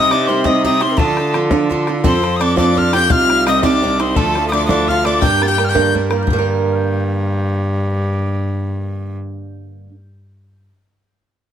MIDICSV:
0, 0, Header, 1, 7, 480
1, 0, Start_track
1, 0, Key_signature, -2, "minor"
1, 0, Tempo, 352941
1, 1337, Time_signature, 6, 3, 24, 8
1, 15670, End_track
2, 0, Start_track
2, 0, Title_t, "Tin whistle"
2, 0, Program_c, 0, 75
2, 0, Note_on_c, 0, 87, 124
2, 154, Note_on_c, 0, 86, 101
2, 174, Note_off_c, 0, 87, 0
2, 375, Note_on_c, 0, 84, 91
2, 395, Note_off_c, 0, 86, 0
2, 613, Note_on_c, 0, 87, 81
2, 634, Note_off_c, 0, 84, 0
2, 878, Note_off_c, 0, 87, 0
2, 887, Note_on_c, 0, 87, 96
2, 1114, Note_on_c, 0, 84, 86
2, 1134, Note_off_c, 0, 87, 0
2, 1329, Note_on_c, 0, 81, 90
2, 1349, Note_off_c, 0, 84, 0
2, 1882, Note_off_c, 0, 81, 0
2, 2792, Note_on_c, 0, 84, 93
2, 3216, Note_on_c, 0, 87, 66
2, 3237, Note_off_c, 0, 84, 0
2, 3280, Note_on_c, 0, 86, 103
2, 3300, Note_off_c, 0, 87, 0
2, 3503, Note_off_c, 0, 86, 0
2, 3510, Note_on_c, 0, 86, 94
2, 3780, Note_on_c, 0, 89, 101
2, 3800, Note_off_c, 0, 86, 0
2, 3999, Note_off_c, 0, 89, 0
2, 4008, Note_on_c, 0, 91, 113
2, 4239, Note_on_c, 0, 89, 127
2, 4260, Note_off_c, 0, 91, 0
2, 4717, Note_off_c, 0, 89, 0
2, 4726, Note_on_c, 0, 87, 104
2, 4931, Note_off_c, 0, 87, 0
2, 4950, Note_on_c, 0, 86, 98
2, 5449, Note_on_c, 0, 84, 99
2, 5469, Note_off_c, 0, 86, 0
2, 5667, Note_on_c, 0, 81, 111
2, 5687, Note_off_c, 0, 84, 0
2, 6093, Note_off_c, 0, 81, 0
2, 6101, Note_on_c, 0, 87, 60
2, 6157, Note_on_c, 0, 86, 95
2, 6177, Note_off_c, 0, 87, 0
2, 6326, Note_off_c, 0, 86, 0
2, 6336, Note_on_c, 0, 87, 73
2, 6382, Note_on_c, 0, 86, 94
2, 6403, Note_off_c, 0, 87, 0
2, 6642, Note_on_c, 0, 89, 101
2, 6662, Note_off_c, 0, 86, 0
2, 6872, Note_on_c, 0, 86, 91
2, 6893, Note_off_c, 0, 89, 0
2, 7101, Note_off_c, 0, 86, 0
2, 7109, Note_on_c, 0, 91, 99
2, 7380, Note_on_c, 0, 93, 66
2, 7401, Note_off_c, 0, 91, 0
2, 7440, Note_on_c, 0, 91, 101
2, 7461, Note_off_c, 0, 93, 0
2, 7679, Note_on_c, 0, 89, 59
2, 7700, Note_off_c, 0, 91, 0
2, 7744, Note_on_c, 0, 91, 88
2, 7765, Note_off_c, 0, 89, 0
2, 8084, Note_off_c, 0, 91, 0
2, 15670, End_track
3, 0, Start_track
3, 0, Title_t, "Fiddle"
3, 0, Program_c, 1, 110
3, 0, Note_on_c, 1, 75, 99
3, 338, Note_on_c, 1, 70, 53
3, 359, Note_off_c, 1, 75, 0
3, 382, Note_on_c, 1, 72, 92
3, 402, Note_off_c, 1, 70, 0
3, 622, Note_on_c, 1, 75, 82
3, 642, Note_off_c, 1, 72, 0
3, 867, Note_off_c, 1, 75, 0
3, 875, Note_on_c, 1, 75, 80
3, 1109, Note_on_c, 1, 72, 82
3, 1129, Note_off_c, 1, 75, 0
3, 1240, Note_on_c, 1, 70, 48
3, 1260, Note_off_c, 1, 72, 0
3, 1337, Note_on_c, 1, 69, 77
3, 1357, Note_off_c, 1, 70, 0
3, 1886, Note_off_c, 1, 69, 0
3, 2779, Note_on_c, 1, 72, 96
3, 3274, Note_on_c, 1, 74, 96
3, 3294, Note_off_c, 1, 72, 0
3, 3482, Note_off_c, 1, 74, 0
3, 3490, Note_on_c, 1, 74, 85
3, 3657, Note_off_c, 1, 74, 0
3, 3669, Note_on_c, 1, 74, 76
3, 3829, Note_off_c, 1, 74, 0
3, 3837, Note_on_c, 1, 74, 93
3, 3989, Note_on_c, 1, 79, 106
3, 4010, Note_off_c, 1, 74, 0
3, 4217, Note_on_c, 1, 77, 104
3, 4237, Note_off_c, 1, 79, 0
3, 4709, Note_on_c, 1, 75, 94
3, 4729, Note_off_c, 1, 77, 0
3, 4953, Note_on_c, 1, 74, 86
3, 4974, Note_off_c, 1, 75, 0
3, 5433, Note_off_c, 1, 74, 0
3, 5442, Note_on_c, 1, 72, 80
3, 5655, Note_on_c, 1, 69, 89
3, 5676, Note_off_c, 1, 72, 0
3, 6150, Note_off_c, 1, 69, 0
3, 6155, Note_on_c, 1, 74, 88
3, 6366, Note_off_c, 1, 74, 0
3, 6383, Note_on_c, 1, 74, 82
3, 6626, Note_off_c, 1, 74, 0
3, 6642, Note_on_c, 1, 77, 81
3, 6855, Note_off_c, 1, 77, 0
3, 6863, Note_on_c, 1, 74, 81
3, 7095, Note_on_c, 1, 79, 90
3, 7116, Note_off_c, 1, 74, 0
3, 7425, Note_off_c, 1, 79, 0
3, 7433, Note_on_c, 1, 79, 93
3, 7720, Note_off_c, 1, 79, 0
3, 7727, Note_on_c, 1, 79, 66
3, 8051, Note_off_c, 1, 79, 0
3, 15670, End_track
4, 0, Start_track
4, 0, Title_t, "Bouzouki"
4, 0, Program_c, 2, 25
4, 0, Note_on_c, 2, 63, 101
4, 152, Note_off_c, 2, 63, 0
4, 172, Note_on_c, 2, 62, 96
4, 387, Note_on_c, 2, 60, 74
4, 400, Note_off_c, 2, 62, 0
4, 602, Note_on_c, 2, 63, 89
4, 622, Note_off_c, 2, 60, 0
4, 853, Note_off_c, 2, 63, 0
4, 878, Note_on_c, 2, 63, 93
4, 1091, Note_off_c, 2, 63, 0
4, 1095, Note_on_c, 2, 60, 85
4, 1310, Note_off_c, 2, 60, 0
4, 1315, Note_on_c, 2, 57, 87
4, 1836, Note_off_c, 2, 57, 0
4, 2780, Note_on_c, 2, 60, 106
4, 3236, Note_off_c, 2, 60, 0
4, 3274, Note_on_c, 2, 62, 88
4, 3497, Note_off_c, 2, 62, 0
4, 3513, Note_on_c, 2, 62, 78
4, 3964, Note_off_c, 2, 62, 0
4, 3990, Note_on_c, 2, 67, 104
4, 4116, Note_off_c, 2, 67, 0
4, 4132, Note_on_c, 2, 67, 74
4, 4215, Note_off_c, 2, 67, 0
4, 4220, Note_on_c, 2, 65, 98
4, 4717, Note_off_c, 2, 65, 0
4, 4722, Note_on_c, 2, 63, 90
4, 4936, Note_off_c, 2, 63, 0
4, 4941, Note_on_c, 2, 62, 94
4, 5433, Note_on_c, 2, 60, 84
4, 5447, Note_off_c, 2, 62, 0
4, 5658, Note_off_c, 2, 60, 0
4, 5664, Note_on_c, 2, 57, 93
4, 6120, Note_off_c, 2, 57, 0
4, 6166, Note_on_c, 2, 62, 84
4, 6372, Note_off_c, 2, 62, 0
4, 6397, Note_on_c, 2, 62, 89
4, 6634, Note_off_c, 2, 62, 0
4, 6671, Note_on_c, 2, 65, 85
4, 6871, Note_off_c, 2, 65, 0
4, 6889, Note_on_c, 2, 62, 87
4, 7098, Note_off_c, 2, 62, 0
4, 7103, Note_on_c, 2, 67, 94
4, 7418, Note_off_c, 2, 67, 0
4, 7453, Note_on_c, 2, 67, 96
4, 7731, Note_off_c, 2, 67, 0
4, 7761, Note_on_c, 2, 67, 83
4, 8069, Note_off_c, 2, 67, 0
4, 15670, End_track
5, 0, Start_track
5, 0, Title_t, "Steel-string acoustic guitar"
5, 0, Program_c, 3, 25
5, 0, Note_on_c, 3, 48, 73
5, 0, Note_on_c, 3, 55, 76
5, 0, Note_on_c, 3, 60, 85
5, 0, Note_on_c, 3, 63, 94
5, 149, Note_on_c, 3, 67, 56
5, 156, Note_off_c, 3, 63, 0
5, 159, Note_off_c, 3, 48, 0
5, 163, Note_off_c, 3, 55, 0
5, 163, Note_off_c, 3, 60, 0
5, 172, Note_on_c, 3, 63, 52
5, 176, Note_on_c, 3, 60, 44
5, 381, Note_off_c, 3, 60, 0
5, 382, Note_off_c, 3, 67, 0
5, 386, Note_off_c, 3, 63, 0
5, 386, Note_on_c, 3, 55, 61
5, 398, Note_on_c, 3, 60, 65
5, 403, Note_on_c, 3, 63, 71
5, 416, Note_on_c, 3, 67, 73
5, 608, Note_off_c, 3, 67, 0
5, 614, Note_off_c, 3, 63, 0
5, 615, Note_off_c, 3, 55, 0
5, 615, Note_off_c, 3, 60, 0
5, 625, Note_on_c, 3, 67, 72
5, 630, Note_on_c, 3, 63, 80
5, 631, Note_on_c, 3, 60, 75
5, 638, Note_on_c, 3, 55, 73
5, 639, Note_on_c, 3, 48, 63
5, 866, Note_off_c, 3, 55, 0
5, 873, Note_off_c, 3, 60, 0
5, 882, Note_on_c, 3, 55, 67
5, 883, Note_off_c, 3, 67, 0
5, 886, Note_off_c, 3, 63, 0
5, 889, Note_on_c, 3, 60, 68
5, 891, Note_off_c, 3, 48, 0
5, 904, Note_on_c, 3, 63, 80
5, 904, Note_on_c, 3, 67, 67
5, 1101, Note_off_c, 3, 67, 0
5, 1109, Note_off_c, 3, 55, 0
5, 1113, Note_off_c, 3, 60, 0
5, 1114, Note_off_c, 3, 63, 0
5, 1118, Note_on_c, 3, 67, 69
5, 1130, Note_on_c, 3, 63, 52
5, 1144, Note_on_c, 3, 60, 47
5, 1340, Note_on_c, 3, 50, 67
5, 1341, Note_off_c, 3, 67, 0
5, 1343, Note_off_c, 3, 60, 0
5, 1346, Note_on_c, 3, 53, 70
5, 1348, Note_off_c, 3, 63, 0
5, 1349, Note_on_c, 3, 62, 78
5, 1356, Note_on_c, 3, 65, 81
5, 1356, Note_on_c, 3, 69, 82
5, 1592, Note_off_c, 3, 69, 0
5, 1601, Note_off_c, 3, 50, 0
5, 1605, Note_off_c, 3, 53, 0
5, 1606, Note_off_c, 3, 62, 0
5, 1608, Note_on_c, 3, 69, 61
5, 1609, Note_off_c, 3, 65, 0
5, 1623, Note_on_c, 3, 65, 48
5, 1635, Note_on_c, 3, 62, 44
5, 1817, Note_off_c, 3, 62, 0
5, 1818, Note_off_c, 3, 65, 0
5, 1818, Note_on_c, 3, 53, 60
5, 1827, Note_off_c, 3, 69, 0
5, 1833, Note_on_c, 3, 62, 70
5, 1834, Note_on_c, 3, 65, 68
5, 1843, Note_on_c, 3, 69, 71
5, 2038, Note_off_c, 3, 69, 0
5, 2045, Note_off_c, 3, 65, 0
5, 2052, Note_off_c, 3, 53, 0
5, 2054, Note_on_c, 3, 69, 94
5, 2056, Note_off_c, 3, 62, 0
5, 2061, Note_on_c, 3, 65, 78
5, 2068, Note_on_c, 3, 53, 68
5, 2072, Note_on_c, 3, 62, 72
5, 2076, Note_on_c, 3, 50, 60
5, 2289, Note_off_c, 3, 53, 0
5, 2301, Note_off_c, 3, 62, 0
5, 2305, Note_off_c, 3, 65, 0
5, 2306, Note_on_c, 3, 53, 66
5, 2318, Note_on_c, 3, 62, 76
5, 2319, Note_off_c, 3, 69, 0
5, 2322, Note_on_c, 3, 65, 80
5, 2330, Note_off_c, 3, 50, 0
5, 2338, Note_on_c, 3, 69, 91
5, 2531, Note_off_c, 3, 69, 0
5, 2542, Note_off_c, 3, 53, 0
5, 2543, Note_off_c, 3, 65, 0
5, 2547, Note_on_c, 3, 69, 67
5, 2548, Note_off_c, 3, 62, 0
5, 2560, Note_on_c, 3, 65, 59
5, 2574, Note_on_c, 3, 62, 56
5, 2767, Note_off_c, 3, 62, 0
5, 2770, Note_off_c, 3, 65, 0
5, 2770, Note_on_c, 3, 53, 64
5, 2773, Note_off_c, 3, 69, 0
5, 2773, Note_on_c, 3, 60, 74
5, 2786, Note_on_c, 3, 65, 85
5, 2789, Note_on_c, 3, 69, 83
5, 3009, Note_off_c, 3, 69, 0
5, 3023, Note_off_c, 3, 65, 0
5, 3025, Note_on_c, 3, 69, 49
5, 3037, Note_off_c, 3, 53, 0
5, 3039, Note_off_c, 3, 60, 0
5, 3039, Note_on_c, 3, 65, 50
5, 3054, Note_on_c, 3, 60, 41
5, 3245, Note_off_c, 3, 60, 0
5, 3255, Note_on_c, 3, 53, 59
5, 3256, Note_off_c, 3, 65, 0
5, 3262, Note_off_c, 3, 69, 0
5, 3262, Note_on_c, 3, 60, 64
5, 3272, Note_on_c, 3, 65, 61
5, 3281, Note_on_c, 3, 69, 70
5, 3464, Note_off_c, 3, 69, 0
5, 3471, Note_off_c, 3, 65, 0
5, 3476, Note_off_c, 3, 60, 0
5, 3480, Note_on_c, 3, 69, 73
5, 3486, Note_off_c, 3, 53, 0
5, 3488, Note_on_c, 3, 65, 75
5, 3493, Note_on_c, 3, 60, 69
5, 3503, Note_on_c, 3, 53, 61
5, 3728, Note_off_c, 3, 53, 0
5, 3736, Note_off_c, 3, 60, 0
5, 3744, Note_on_c, 3, 53, 73
5, 3746, Note_off_c, 3, 65, 0
5, 3753, Note_off_c, 3, 69, 0
5, 3753, Note_on_c, 3, 60, 61
5, 3763, Note_on_c, 3, 65, 76
5, 3770, Note_on_c, 3, 69, 81
5, 3968, Note_off_c, 3, 69, 0
5, 3982, Note_off_c, 3, 53, 0
5, 3984, Note_off_c, 3, 65, 0
5, 3984, Note_on_c, 3, 69, 57
5, 3986, Note_off_c, 3, 60, 0
5, 4000, Note_on_c, 3, 65, 55
5, 4013, Note_on_c, 3, 60, 44
5, 4212, Note_off_c, 3, 60, 0
5, 4213, Note_on_c, 3, 48, 83
5, 4216, Note_off_c, 3, 69, 0
5, 4221, Note_on_c, 3, 55, 70
5, 4224, Note_off_c, 3, 65, 0
5, 4228, Note_on_c, 3, 60, 72
5, 4233, Note_on_c, 3, 63, 82
5, 4234, Note_on_c, 3, 67, 90
5, 4464, Note_off_c, 3, 67, 0
5, 4476, Note_off_c, 3, 63, 0
5, 4479, Note_off_c, 3, 48, 0
5, 4481, Note_on_c, 3, 67, 57
5, 4484, Note_off_c, 3, 55, 0
5, 4487, Note_off_c, 3, 60, 0
5, 4492, Note_on_c, 3, 63, 53
5, 4506, Note_on_c, 3, 60, 44
5, 4697, Note_off_c, 3, 60, 0
5, 4702, Note_on_c, 3, 55, 58
5, 4710, Note_off_c, 3, 63, 0
5, 4710, Note_off_c, 3, 67, 0
5, 4714, Note_on_c, 3, 60, 63
5, 4726, Note_on_c, 3, 63, 68
5, 4737, Note_on_c, 3, 67, 66
5, 4917, Note_off_c, 3, 67, 0
5, 4921, Note_off_c, 3, 63, 0
5, 4930, Note_off_c, 3, 60, 0
5, 4932, Note_off_c, 3, 55, 0
5, 4933, Note_on_c, 3, 67, 88
5, 4938, Note_on_c, 3, 63, 89
5, 4946, Note_on_c, 3, 60, 73
5, 4949, Note_on_c, 3, 55, 67
5, 4952, Note_on_c, 3, 48, 75
5, 5183, Note_off_c, 3, 55, 0
5, 5195, Note_off_c, 3, 60, 0
5, 5199, Note_on_c, 3, 55, 58
5, 5200, Note_off_c, 3, 67, 0
5, 5202, Note_off_c, 3, 63, 0
5, 5209, Note_off_c, 3, 48, 0
5, 5212, Note_on_c, 3, 60, 68
5, 5218, Note_on_c, 3, 63, 72
5, 5224, Note_on_c, 3, 67, 67
5, 5409, Note_off_c, 3, 67, 0
5, 5423, Note_off_c, 3, 63, 0
5, 5426, Note_on_c, 3, 67, 61
5, 5430, Note_off_c, 3, 55, 0
5, 5436, Note_off_c, 3, 60, 0
5, 5440, Note_on_c, 3, 63, 54
5, 5456, Note_on_c, 3, 60, 51
5, 5657, Note_off_c, 3, 67, 0
5, 5660, Note_off_c, 3, 60, 0
5, 5660, Note_on_c, 3, 50, 82
5, 5664, Note_off_c, 3, 63, 0
5, 5664, Note_on_c, 3, 53, 83
5, 5666, Note_on_c, 3, 62, 75
5, 5674, Note_on_c, 3, 65, 73
5, 5679, Note_on_c, 3, 69, 88
5, 5898, Note_off_c, 3, 69, 0
5, 5914, Note_on_c, 3, 69, 58
5, 5915, Note_off_c, 3, 65, 0
5, 5923, Note_off_c, 3, 50, 0
5, 5926, Note_off_c, 3, 53, 0
5, 5926, Note_off_c, 3, 62, 0
5, 5931, Note_on_c, 3, 65, 48
5, 5949, Note_on_c, 3, 62, 40
5, 6137, Note_off_c, 3, 62, 0
5, 6145, Note_on_c, 3, 53, 60
5, 6146, Note_off_c, 3, 65, 0
5, 6147, Note_off_c, 3, 69, 0
5, 6154, Note_on_c, 3, 62, 65
5, 6162, Note_on_c, 3, 65, 63
5, 6168, Note_on_c, 3, 69, 70
5, 6362, Note_off_c, 3, 69, 0
5, 6369, Note_off_c, 3, 65, 0
5, 6375, Note_off_c, 3, 62, 0
5, 6377, Note_off_c, 3, 53, 0
5, 6378, Note_on_c, 3, 69, 72
5, 6386, Note_on_c, 3, 65, 76
5, 6391, Note_on_c, 3, 62, 84
5, 6395, Note_on_c, 3, 53, 71
5, 6400, Note_on_c, 3, 50, 63
5, 6618, Note_off_c, 3, 53, 0
5, 6633, Note_off_c, 3, 62, 0
5, 6634, Note_on_c, 3, 53, 62
5, 6640, Note_off_c, 3, 65, 0
5, 6643, Note_off_c, 3, 69, 0
5, 6649, Note_on_c, 3, 62, 67
5, 6653, Note_off_c, 3, 50, 0
5, 6656, Note_on_c, 3, 65, 68
5, 6664, Note_on_c, 3, 69, 66
5, 6849, Note_off_c, 3, 69, 0
5, 6866, Note_on_c, 3, 69, 55
5, 6867, Note_off_c, 3, 53, 0
5, 6869, Note_off_c, 3, 65, 0
5, 6875, Note_off_c, 3, 62, 0
5, 6885, Note_on_c, 3, 65, 49
5, 6898, Note_on_c, 3, 62, 46
5, 7080, Note_off_c, 3, 62, 0
5, 7083, Note_on_c, 3, 50, 75
5, 7084, Note_on_c, 3, 43, 77
5, 7091, Note_off_c, 3, 65, 0
5, 7093, Note_on_c, 3, 55, 86
5, 7096, Note_on_c, 3, 58, 81
5, 7096, Note_on_c, 3, 62, 78
5, 7098, Note_off_c, 3, 69, 0
5, 7106, Note_on_c, 3, 70, 90
5, 7339, Note_off_c, 3, 70, 0
5, 7351, Note_off_c, 3, 62, 0
5, 7355, Note_off_c, 3, 50, 0
5, 7356, Note_off_c, 3, 43, 0
5, 7356, Note_on_c, 3, 70, 52
5, 7360, Note_off_c, 3, 55, 0
5, 7361, Note_off_c, 3, 58, 0
5, 7368, Note_on_c, 3, 62, 53
5, 7375, Note_on_c, 3, 58, 43
5, 7382, Note_on_c, 3, 55, 41
5, 7563, Note_off_c, 3, 55, 0
5, 7576, Note_off_c, 3, 58, 0
5, 7580, Note_on_c, 3, 55, 52
5, 7581, Note_off_c, 3, 62, 0
5, 7588, Note_off_c, 3, 70, 0
5, 7592, Note_on_c, 3, 58, 55
5, 7598, Note_on_c, 3, 62, 59
5, 7609, Note_on_c, 3, 70, 66
5, 7799, Note_off_c, 3, 70, 0
5, 7803, Note_off_c, 3, 62, 0
5, 7805, Note_off_c, 3, 58, 0
5, 7809, Note_off_c, 3, 55, 0
5, 7815, Note_on_c, 3, 70, 85
5, 7819, Note_on_c, 3, 62, 76
5, 7821, Note_on_c, 3, 58, 73
5, 7825, Note_on_c, 3, 55, 65
5, 7829, Note_on_c, 3, 50, 59
5, 7840, Note_on_c, 3, 43, 63
5, 8059, Note_off_c, 3, 55, 0
5, 8070, Note_off_c, 3, 58, 0
5, 8075, Note_off_c, 3, 62, 0
5, 8075, Note_on_c, 3, 55, 61
5, 8081, Note_off_c, 3, 70, 0
5, 8086, Note_on_c, 3, 58, 66
5, 8088, Note_off_c, 3, 50, 0
5, 8091, Note_on_c, 3, 62, 71
5, 8093, Note_off_c, 3, 43, 0
5, 8105, Note_on_c, 3, 70, 65
5, 8279, Note_off_c, 3, 70, 0
5, 8289, Note_off_c, 3, 62, 0
5, 8296, Note_on_c, 3, 70, 59
5, 8305, Note_on_c, 3, 62, 54
5, 8306, Note_off_c, 3, 58, 0
5, 8308, Note_off_c, 3, 55, 0
5, 8323, Note_on_c, 3, 58, 58
5, 8329, Note_on_c, 3, 55, 55
5, 8466, Note_on_c, 3, 43, 63
5, 8525, Note_on_c, 3, 50, 85
5, 8533, Note_off_c, 3, 70, 0
5, 8537, Note_off_c, 3, 62, 0
5, 8546, Note_off_c, 3, 58, 0
5, 8549, Note_off_c, 3, 55, 0
5, 8573, Note_on_c, 3, 55, 85
5, 8609, Note_on_c, 3, 58, 85
5, 8654, Note_on_c, 3, 62, 69
5, 8683, Note_on_c, 3, 70, 81
5, 13421, Note_off_c, 3, 43, 0
5, 13451, Note_off_c, 3, 50, 0
5, 13474, Note_off_c, 3, 55, 0
5, 13492, Note_off_c, 3, 58, 0
5, 13515, Note_off_c, 3, 62, 0
5, 13529, Note_off_c, 3, 70, 0
5, 15670, End_track
6, 0, Start_track
6, 0, Title_t, "Cello"
6, 0, Program_c, 4, 42
6, 0, Note_on_c, 4, 48, 108
6, 1347, Note_on_c, 4, 50, 96
6, 1367, Note_off_c, 4, 48, 0
6, 2784, Note_on_c, 4, 41, 87
6, 2804, Note_off_c, 4, 50, 0
6, 4217, Note_on_c, 4, 36, 94
6, 4238, Note_off_c, 4, 41, 0
6, 5661, Note_on_c, 4, 38, 102
6, 5681, Note_off_c, 4, 36, 0
6, 7102, Note_on_c, 4, 43, 99
6, 7123, Note_off_c, 4, 38, 0
6, 8513, Note_off_c, 4, 43, 0
6, 8539, Note_on_c, 4, 43, 119
6, 12451, Note_off_c, 4, 43, 0
6, 15670, End_track
7, 0, Start_track
7, 0, Title_t, "Bodhran"
7, 152, Note_on_c, 9, 64, 73
7, 288, Note_off_c, 9, 64, 0
7, 613, Note_on_c, 9, 64, 88
7, 749, Note_off_c, 9, 64, 0
7, 873, Note_on_c, 9, 64, 32
7, 1009, Note_off_c, 9, 64, 0
7, 1102, Note_on_c, 9, 64, 62
7, 1238, Note_off_c, 9, 64, 0
7, 1329, Note_on_c, 9, 64, 83
7, 1465, Note_off_c, 9, 64, 0
7, 1591, Note_on_c, 9, 64, 68
7, 1727, Note_off_c, 9, 64, 0
7, 1826, Note_on_c, 9, 64, 83
7, 1962, Note_off_c, 9, 64, 0
7, 2050, Note_on_c, 9, 64, 96
7, 2186, Note_off_c, 9, 64, 0
7, 2321, Note_on_c, 9, 64, 31
7, 2457, Note_off_c, 9, 64, 0
7, 2545, Note_on_c, 9, 64, 59
7, 2681, Note_off_c, 9, 64, 0
7, 2776, Note_on_c, 9, 64, 88
7, 2912, Note_off_c, 9, 64, 0
7, 3043, Note_on_c, 9, 64, 66
7, 3179, Note_off_c, 9, 64, 0
7, 3276, Note_on_c, 9, 64, 80
7, 3412, Note_off_c, 9, 64, 0
7, 3498, Note_on_c, 9, 64, 87
7, 3634, Note_off_c, 9, 64, 0
7, 3770, Note_on_c, 9, 64, 30
7, 3906, Note_off_c, 9, 64, 0
7, 3987, Note_on_c, 9, 64, 82
7, 4123, Note_off_c, 9, 64, 0
7, 4218, Note_on_c, 9, 64, 99
7, 4354, Note_off_c, 9, 64, 0
7, 4485, Note_on_c, 9, 64, 69
7, 4621, Note_off_c, 9, 64, 0
7, 4716, Note_on_c, 9, 64, 80
7, 4852, Note_off_c, 9, 64, 0
7, 4939, Note_on_c, 9, 64, 89
7, 5075, Note_off_c, 9, 64, 0
7, 5207, Note_on_c, 9, 64, 30
7, 5343, Note_off_c, 9, 64, 0
7, 5438, Note_on_c, 9, 64, 62
7, 5574, Note_off_c, 9, 64, 0
7, 5660, Note_on_c, 9, 64, 82
7, 5796, Note_off_c, 9, 64, 0
7, 5920, Note_on_c, 9, 64, 65
7, 6056, Note_off_c, 9, 64, 0
7, 6149, Note_on_c, 9, 64, 76
7, 6285, Note_off_c, 9, 64, 0
7, 6380, Note_on_c, 9, 64, 86
7, 6516, Note_off_c, 9, 64, 0
7, 6643, Note_on_c, 9, 64, 30
7, 6779, Note_off_c, 9, 64, 0
7, 6868, Note_on_c, 9, 64, 60
7, 7004, Note_off_c, 9, 64, 0
7, 7101, Note_on_c, 9, 64, 84
7, 7237, Note_off_c, 9, 64, 0
7, 7369, Note_on_c, 9, 64, 69
7, 7505, Note_off_c, 9, 64, 0
7, 7593, Note_on_c, 9, 64, 75
7, 7729, Note_off_c, 9, 64, 0
7, 7825, Note_on_c, 9, 64, 81
7, 7961, Note_off_c, 9, 64, 0
7, 8082, Note_on_c, 9, 64, 28
7, 8218, Note_off_c, 9, 64, 0
7, 8305, Note_on_c, 9, 64, 77
7, 8441, Note_off_c, 9, 64, 0
7, 8534, Note_on_c, 9, 64, 83
7, 8670, Note_off_c, 9, 64, 0
7, 15670, End_track
0, 0, End_of_file